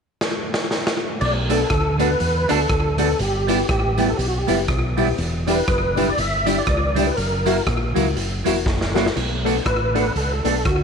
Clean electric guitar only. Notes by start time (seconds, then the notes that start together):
1.49 A3 D4 F#4
1.98 A3 D4 F#4
2.19 muted clean electric guitar stroke
2.48 A3 D4 F#4
2.98 A3 D4 F#4
3.47 G3 B3 E4
3.97 G3 B3 E4
4.18 muted clean electric guitar stroke
4.47 G3 B3 E4
4.68 muted clean electric guitar stroke
4.97 G3 B3 E4
5.47 G3 D4 E4
5.97 G3 D4 E4
6.17 muted clean electric guitar stroke
6.46 G3 D4 E4
6.95 G3 D4 E4
7.45 F#3 A#3 E4
7.95 F#3 A#3 E4
8.16 muted clean electric guitar stroke
8.44 F#3 A#3 E4
8.65 muted clean electric guitar stroke
8.95 F#3 A#3 E4
9.45 A3 D4 F#4
9.94 A3 D4 F#4
10.15 muted clean electric guitar stroke
10.45 A3 D4 F#4